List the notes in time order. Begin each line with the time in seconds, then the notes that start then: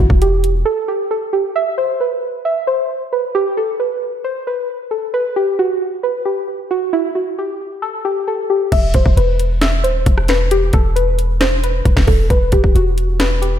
0.00 F#4
0.10 E1, kick
0.22 G4, closed hi-hat
0.44 closed hi-hat
0.65 A4
0.88 G4
1.11 A4
1.33 G4
1.56 E5
1.78 C5
2.00 B4
2.45 E5
2.67 C5
3.13 B4
3.35 G4
3.57 A4
3.80 B4
4.24 C5
4.47 B4
4.91 A4
5.14 B4
5.36 G4
5.59 F#4
6.03 B4
6.25 G4
6.71 F#4
6.93 E4
7.15 F#4
7.39 G4
7.82 A4
8.05 G4
8.28 A4
8.50 G4
8.72 E1 E5, kick, closed hi-hat, crash
8.94 E1 C5, kick, closed hi-hat
9.06 E1, kick
9.17 E1 B4, closed hi-hat
9.40 closed hi-hat
9.62 E5, finger snap, snare, closed hi-hat
9.84 D#1 C5, closed hi-hat
10.06 E1, kick, closed hi-hat
10.18 cross-stick
10.28 B4, finger snap, snare, closed hi-hat
10.51 G4, closed hi-hat
10.73 E1 A4, kick, closed hi-hat
10.96 B4, closed hi-hat
11.19 closed hi-hat
11.41 C5, finger snap, snare, closed hi-hat
11.64 B4, closed hi-hat
11.85 E1, kick, closed hi-hat
11.97 E1, finger snap, kick, snare
12.07 E1 A4, kick, open hi-hat
12.30 E1 B4, kick, closed hi-hat
12.52 E1 G4, kick, closed hi-hat
12.64 kick
12.75 E1 F#4, closed hi-hat
12.98 closed hi-hat
13.20 B4, finger snap, snare, closed hi-hat
13.42 G4, closed hi-hat